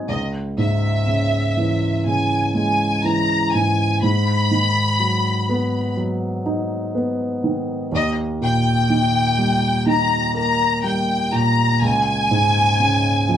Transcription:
Already playing: F#3 C4 D#4 D#5 F#5 G#5
0.08 C#2 D#5
0.58 G#2 E5
1.07 C#3
1.57 E3
2.06 C#3 G#5
2.55 G#3 G#5
3.04 E3 A#5
3.53 G#2 G#5
4.02 G#2 B5
4.51 D#3
5.00 F#3
5.49 B3
5.97 F#3
6.46 D#4
6.95 B3
7.44 D#3
7.92 D#2 D#5
8.41 A#2 G5
8.90 D#3
9.38 G3
9.86 D#3 A#5
10.34 A#3 A#5
10.84 G3 G5
11.32 A#2 A#5
11.82 C#2 G#5
12.31 G#2
12.80 C#3
13.29 F3

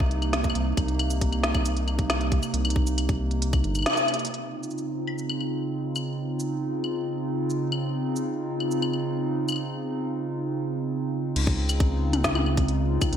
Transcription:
Already playing: C2 C3 A#3 D#4
0.00 kick
0.11 closed hi-hat
0.22 closed hi-hat, claves
0.33 snare, closed hi-hat
0.44 kick, closed hi-hat, cabasa
0.50 claves
0.55 C2, closed hi-hat
0.77 C2, kick, closed hi-hat, claves
0.88 closed hi-hat
0.99 closed hi-hat, claves
1.10 closed hi-hat, cabasa
1.21 kick, closed hi-hat
1.32 closed hi-hat, claves
1.43 snare, closed hi-hat
1.55 kick, closed hi-hat, claves
1.66 closed hi-hat, cabasa
1.77 closed hi-hat
1.88 closed hi-hat, claves
1.99 kick, closed hi-hat
2.10 snare, closed hi-hat, claves
2.21 closed hi-hat
2.32 kick, closed hi-hat
2.43 closed hi-hat, cabasa, claves
2.54 C2, closed hi-hat
2.65 closed hi-hat, claves
2.70 closed hi-hat
2.76 kick
2.87 closed hi-hat, cabasa
2.98 closed hi-hat, claves
3.09 kick, closed hi-hat
3.31 closed hi-hat
3.42 closed hi-hat
3.53 kick, closed hi-hat, claves
3.64 G1, closed hi-hat
3.75 closed hi-hat, cabasa, claves
3.79 claves
3.82 snare, closed hi-hat, claves
3.86 claves
3.90 claves
3.93 closed hi-hat, cabasa, claves
4.08 closed hi-hat, claves
4.14 closed hi-hat
4.19 closed hi-hat
4.25 closed hi-hat
4.27 C#3 C4 D#4 F4, closed hi-hat
4.34 closed hi-hat
4.63 cabasa
4.71 cabasa
4.78 cabasa
5.07 claves
5.18 cabasa
5.30 claves
5.41 claves
5.96 cabasa, claves
6.40 cabasa
6.84 claves
7.50 cabasa
7.72 claves
8.16 cabasa
8.60 claves
8.71 cabasa
8.82 claves
8.93 claves
9.49 cabasa, claves
9.52 claves
9.56 claves
11.36 C#2 C#3 C4 D#4 F4, closed hi-hat, crash
11.47 kick
11.69 closed hi-hat, cabasa, claves
11.80 kick, closed hi-hat
12.13 closed hi-hat, high tom, claves
12.24 kick, snare, closed hi-hat, cabasa
12.35 high tom, claves
12.46 claves
12.57 kick, closed hi-hat
12.68 closed hi-hat
13.02 kick, closed hi-hat, cabasa, claves
13.13 C#2, closed hi-hat

